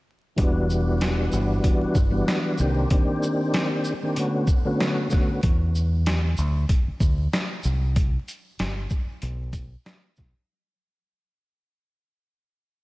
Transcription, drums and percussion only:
0.38 kick, closed hi-hat
0.70 shaker
1.01 snare, closed hi-hat
1.32 shaker
1.64 kick, closed hi-hat
1.95 kick, shaker
2.28 snare, closed hi-hat
2.58 shaker
2.90 kick, closed hi-hat
3.23 shaker
3.54 snare, closed hi-hat
3.84 shaker
4.16 closed hi-hat
4.47 kick, shaker
4.80 snare, closed hi-hat
5.10 kick, snare, shaker
5.43 kick, closed hi-hat
5.75 shaker
6.06 snare, closed hi-hat
6.37 shaker
6.69 kick, closed hi-hat
7.00 kick, shaker
7.33 snare, closed hi-hat
7.63 shaker
7.96 kick, closed hi-hat
8.28 closed hi-hat, shaker
8.59 snare, closed hi-hat
8.90 kick, shaker
9.22 closed hi-hat
9.53 kick, closed hi-hat, shaker
9.86 snare, closed hi-hat
10.16 kick, snare, shaker

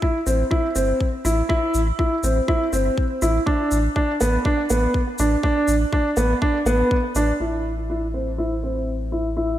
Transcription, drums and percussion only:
0.02 kick
0.27 shaker
0.51 kick
0.76 shaker
1.00 kick
1.25 shaker
1.50 kick
1.74 shaker
1.99 kick
2.24 shaker
2.48 kick
2.73 shaker
2.98 kick
3.22 shaker
3.47 kick
3.71 shaker
3.96 kick
4.21 shaker
4.45 kick
4.70 shaker
4.94 kick
5.19 shaker
5.43 kick
5.68 shaker
5.93 kick
6.17 shaker
6.42 kick
6.66 shaker
6.91 kick
7.15 shaker

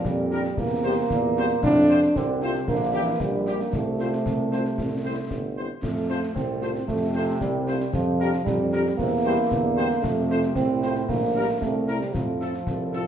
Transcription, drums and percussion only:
0.05 concert bass drum, snare
0.31 snare
0.44 snare
0.57 concert bass drum, snare
1.10 concert bass drum, snare
1.37 snare
1.50 snare
1.63 concert bass drum, snare, crash
1.89 snare
2.02 snare
2.16 concert bass drum, snare
2.42 snare
2.55 snare
2.68 concert bass drum, snare
3.20 concert bass drum, snare
3.46 snare
3.60 snare
3.73 concert bass drum, snare
3.99 snare
4.12 snare
4.26 concert bass drum, snare
4.52 snare
4.65 snare
4.78 concert bass drum, snare
5.31 concert bass drum, snare
5.83 concert bass drum, snare, crash
6.10 snare
6.23 snare
6.36 concert bass drum, snare
6.62 snare
6.75 snare
6.88 concert bass drum, snare
7.41 concert bass drum, snare
7.67 snare
7.80 snare
7.93 concert bass drum, snare
8.20 snare
8.33 snare
8.46 concert bass drum, snare
8.73 snare
8.86 snare
8.99 concert bass drum, snare
9.51 concert bass drum, snare
9.78 snare
9.91 snare
10.04 concert bass drum, snare, crash
10.30 snare
10.43 snare
10.56 concert bass drum, snare
10.83 snare
10.95 snare
11.09 concert bass drum, snare
11.62 concert bass drum, snare
11.88 snare
12.01 snare
12.14 concert bass drum, snare
12.41 snare
12.54 snare
12.67 concert bass drum, snare
12.93 snare

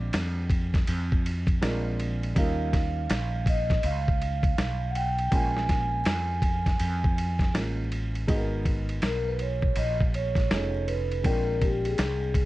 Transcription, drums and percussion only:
0.13 snare, hi-hat pedal, ride
0.50 kick, ride
0.74 kick, snare, ride
0.87 ride
1.12 kick
1.26 ride
1.47 kick, ride
1.62 snare, hi-hat pedal, ride
2.00 ride
2.23 ride
2.36 kick, ride
2.73 kick, snare, ride
3.10 snare, hi-hat pedal, ride
3.46 kick, ride
3.70 kick, snare, ride
3.83 ride
4.08 kick
4.22 ride
4.43 kick, ride
4.58 snare, hi-hat pedal, ride
4.95 ride
5.18 ride
5.32 kick, ride
5.57 snare
5.69 kick, snare, ride
6.05 snare, hi-hat pedal, ride
6.42 kick, ride
6.66 kick, snare, ride
6.80 ride
7.04 kick
7.18 ride
7.39 kick, snare, ride
7.55 snare, hi-hat pedal, ride
7.92 ride
8.15 ride
8.28 kick, ride
8.65 kick, ride
8.89 ride
9.02 snare, hi-hat pedal, ride
9.39 ride
9.62 kick
9.76 ride
10.00 kick
10.14 ride
10.35 kick, snare, ride
10.51 snare, hi-hat pedal, ride
10.88 ride
11.12 ride
11.24 kick, ride
11.61 kick, ride
11.85 ride
11.98 snare, hi-hat pedal, ride
12.34 kick, ride

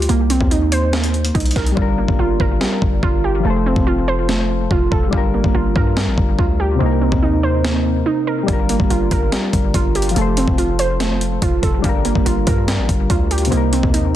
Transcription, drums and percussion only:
0.02 closed hi-hat
0.09 closed hi-hat
0.30 closed hi-hat
0.41 kick
0.51 closed hi-hat
0.72 closed hi-hat
0.93 snare, closed hi-hat
1.04 closed hi-hat
1.14 closed hi-hat
1.25 closed hi-hat
1.35 kick, closed hi-hat
1.40 closed hi-hat
1.46 closed hi-hat
1.51 closed hi-hat
1.56 kick, snare, closed hi-hat, open hi-hat
1.67 closed hi-hat
1.77 kick
2.08 kick
2.40 kick
2.61 snare
2.82 kick
3.03 kick
3.76 kick
4.29 snare
4.71 kick
4.92 kick
5.13 kick
5.44 kick
5.76 kick
5.97 snare
6.18 kick
6.39 kick
7.12 kick
7.65 snare
8.48 kick, closed hi-hat
8.69 closed hi-hat
8.80 kick
8.90 closed hi-hat
9.11 kick, closed hi-hat
9.32 snare, closed hi-hat
9.53 kick, closed hi-hat
9.74 kick, closed hi-hat
9.95 closed hi-hat
10.02 closed hi-hat
10.09 closed hi-hat
10.16 closed hi-hat
10.37 closed hi-hat
10.48 kick
10.58 closed hi-hat
10.79 closed hi-hat
11.00 snare, closed hi-hat
11.21 closed hi-hat
11.42 kick, closed hi-hat
11.63 kick, closed hi-hat
11.84 kick, closed hi-hat
12.05 closed hi-hat
12.15 kick
12.26 closed hi-hat
12.47 kick, closed hi-hat
12.68 snare, closed hi-hat
12.89 kick, closed hi-hat
13.10 kick, closed hi-hat
13.31 closed hi-hat
13.38 closed hi-hat
13.45 closed hi-hat
13.52 closed hi-hat
13.73 closed hi-hat
13.83 kick
13.94 closed hi-hat

